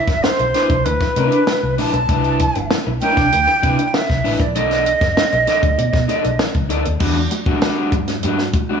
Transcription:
0.00 0.25 E5 medium
0.08 0.20 G1 medium
0.08 muted overdriven electric guitar stroke soft
0.08 kick loud
0.08 snare soft
0.08 closed hi-hat soft
0.23 0.86 C5 medium
0.23 muted overdriven electric guitar stroke soft
0.23 snare loud
0.39 0.52 B1 medium
0.39 muted overdriven electric guitar stroke medium
0.39 closed hi-hat soft
0.54 0.68 D4 medium
0.54 0.68 E4 medium
0.54 0.69 B4 medium
0.54 snare soft
0.54 closed hi-hat medium
0.69 0.85 C2 medium
0.69 muted overdriven electric guitar stroke soft
0.69 kick loud
0.69 closed hi-hat medium
0.84 0.98 D2 loud
0.84 1.78 B4 medium
0.84 muted overdriven electric guitar stroke soft
0.84 closed hi-hat medium
1.00 muted overdriven electric guitar stroke soft
1.00 kick medium
1.00 snare soft
1.00 closed hi-hat soft
1.16 1.29 C3 loud
1.16 1.37 D4 medium
1.16 1.32 E4 medium
1.16 1.31 B4 loud
1.16 closed hi-hat medium
1.32 muted overdriven electric guitar stroke soft
1.32 closed hi-hat soft
1.47 muted overdriven electric guitar stroke soft
1.47 snare loud
1.63 1.79 C2 medium
1.78 1.91 A#1 medium
1.78 1.89 D4 medium
1.78 1.89 E4 medium
1.78 1.89 B4 medium
1.78 2.67 A5 loud
1.78 open hi-hat medium
1.94 2.06 B1 medium
1.94 muted overdriven electric guitar stroke medium
1.94 closed hi-hat soft
2.09 2.46 C2 loud
2.09 2.38 D4 medium
2.09 2.38 E4 medium
2.09 2.38 B4 medium
2.09 kick loud
2.09 closed hi-hat medium
2.24 closed hi-hat soft
2.39 kick medium
2.39 closed hi-hat medium
2.55 2.68 G1 medium
2.55 muted overdriven electric guitar stroke soft
2.55 closed hi-hat soft
2.71 muted overdriven electric guitar stroke soft
2.71 snare loud
2.87 2.99 B1 medium
2.87 muted overdriven electric guitar stroke medium
3.01 3.22 D4 medium
3.01 3.17 E4 medium
3.01 3.16 B4 medium
3.01 3.87 G5 loud
3.01 closed hi-hat medium
3.17 3.29 C2 medium
3.17 muted overdriven electric guitar stroke soft
3.17 kick loud
3.17 snare soft
3.17 closed hi-hat medium
3.32 3.45 D2 loud
3.32 muted overdriven electric guitar stroke soft
3.32 closed hi-hat medium
3.47 muted overdriven electric guitar stroke medium
3.47 closed hi-hat soft
3.63 3.76 C3 loud
3.63 3.76 D4 loud
3.63 3.77 E4 medium
3.63 3.77 B4 loud
3.63 kick medium
3.63 closed hi-hat medium
3.78 muted overdriven electric guitar stroke soft
3.78 closed hi-hat medium
3.87 3.96 G5 medium
3.94 4.43 E5 medium
3.94 muted overdriven electric guitar stroke soft
3.94 snare loud
4.10 4.22 C2 medium
4.10 kick medium
4.10 snare soft
4.24 4.37 A1 medium
4.24 4.35 D4 medium
4.24 4.35 E4 medium
4.24 4.36 B4 medium
4.24 open hi-hat medium
4.40 4.57 A#1 medium
4.40 4.58 D5 medium
4.40 muted overdriven electric guitar stroke soft
4.40 kick loud
4.40 closed hi-hat medium
4.55 4.93 B1 loud
4.55 4.84 D#4 medium
4.55 4.84 A4 loud
4.55 4.84 D5 medium
4.55 6.40 D#5 medium
4.55 closed hi-hat medium
4.71 snare soft
4.71 closed hi-hat soft
4.86 closed hi-hat medium
5.01 5.14 F#1 medium
5.01 muted overdriven electric guitar stroke medium
5.01 kick medium
5.01 snare soft
5.01 closed hi-hat medium
5.17 muted overdriven electric guitar stroke soft
5.17 snare loud
5.32 5.45 B1 medium
5.32 muted overdriven electric guitar stroke soft
5.32 closed hi-hat soft
5.47 5.61 D#4 medium
5.47 5.61 A4 medium
5.47 5.62 D5 loud
5.47 snare soft
5.47 closed hi-hat medium
5.63 5.75 D2 medium
5.63 muted overdriven electric guitar stroke soft
5.63 kick loud
5.63 closed hi-hat medium
5.78 5.91 B2 loud
5.78 muted overdriven electric guitar stroke soft
5.78 closed hi-hat medium
5.93 6.06 B2 medium
5.93 muted overdriven electric guitar stroke soft
5.93 kick medium
5.93 snare soft
5.93 closed hi-hat soft
6.08 6.22 D#4 medium
6.08 6.22 A4 medium
6.08 6.22 D5 loud
6.08 closed hi-hat medium
6.24 6.37 B1 medium
6.24 muted overdriven electric guitar stroke medium
6.24 closed hi-hat soft
6.39 muted overdriven electric guitar stroke soft
6.39 snare loud
6.54 6.71 C#2 medium
6.54 kick medium
6.54 closed hi-hat soft
6.69 6.83 D2 medium
6.69 6.80 D#4 medium
6.69 6.81 A4 medium
6.69 6.81 D5 medium
6.69 closed hi-hat medium
6.85 6.98 D#2 medium
6.85 muted overdriven electric guitar stroke soft
6.85 closed hi-hat medium
7.00 7.25 E2 loud
7.00 7.14 G3 medium
7.00 7.14 D4 medium
7.00 7.14 F#4 medium
7.00 kick loud
7.00 crash loud
7.31 muted overdriven electric guitar stroke soft
7.31 closed hi-hat medium
7.46 7.58 G3 soft
7.46 7.58 D4 medium
7.46 7.57 F#4 medium
7.46 muted fingered electric bass stroke soft
7.46 kick loud
7.61 7.90 G3 loud
7.61 7.90 D4 medium
7.61 7.91 F#4 medium
7.61 snare loud
7.61 closed hi-hat medium
7.92 8.17 G2 medium
7.92 muted overdriven electric guitar stroke soft
7.92 kick medium
7.92 closed hi-hat medium
8.08 muted overdriven electric guitar stroke soft
8.08 snare soft
8.08 closed hi-hat medium
8.23 8.48 G2 loud
8.23 8.37 G3 medium
8.23 8.37 D4 medium
8.23 8.37 F#4 medium
8.23 closed hi-hat medium
8.38 snare soft
8.53 muted overdriven electric guitar stroke soft
8.53 kick loud
8.53 closed hi-hat medium
8.70 8.80 G3 medium
8.70 8.80 D4 medium
8.70 8.80 F#4 medium

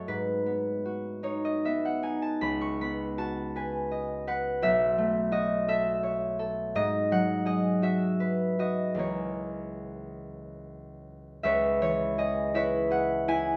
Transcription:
0.00 0.84 F#4 soft
0.00 0.11 A4 medium
0.00 0.10 C#5 medium
0.00 0.23 D#5 medium
0.00 1.74 F#5 medium
0.08 2.45 G#2 medium
0.08 3.54 B4 medium
0.46 1.64 B3 soft
0.85 3.17 F#4 soft
1.23 2.02 D#4 soft
1.23 1.57 C#5 medium
1.45 1.78 D#5 medium
1.65 2.80 B3 soft
1.65 1.98 E5 medium
1.85 2.18 F#5 medium
2.03 4.64 D#4 soft
2.03 2.35 G#5 medium
2.22 2.54 A5 medium
2.41 4.65 C#2 soft
2.41 2.73 B5 medium
2.61 2.92 C#6 medium
2.81 6.71 B3 soft
2.81 6.71 B5 medium
3.18 5.30 F#4 soft
3.18 3.80 A5 medium
3.56 4.26 B4 soft
3.56 4.66 G#5 medium
3.91 4.65 D#5 soft
4.27 8.17 B4 soft
4.27 7.11 F#5 medium
4.62 6.79 B1 medium
4.62 5.67 E5 medium
4.98 6.79 A3 medium
5.32 7.81 F#4 medium
5.32 5.93 D#5 medium
5.68 6.38 A4 medium
5.68 6.79 E5 medium
6.03 6.78 C#5 medium
6.39 6.78 A4 medium
6.75 9.04 G#2 medium
6.75 7.45 D#5 medium
7.11 9.04 F#3 medium
7.11 9.04 F#5 medium
7.46 8.97 G#4 medium
7.46 8.58 D#5 medium
7.82 8.58 F#4 medium
7.82 9.16 E5 medium
8.20 9.03 B4 medium
8.59 9.03 F#4 soft
8.59 9.03 D#5 medium
8.95 11.43 C#2 soft
8.95 11.43 E3 soft
8.95 11.44 A#3 soft
8.95 12.17 G#4 soft
8.99 11.44 C#5 medium
11.43 13.57 C#2 medium
11.43 12.55 B4 medium
11.43 11.81 C#5 medium
11.43 12.54 E5 medium
11.81 13.57 E3 soft
11.81 12.54 C#5 medium
12.18 12.90 G#4 medium
12.18 12.81 D#5 medium
12.54 13.27 E4 medium
12.54 13.57 B4 medium
12.54 13.57 C#5 medium
12.54 13.57 E5 medium
12.91 13.57 G#4 medium
12.91 13.52 F#5 medium
13.28 13.57 E4 medium
13.28 13.57 G#5 loud

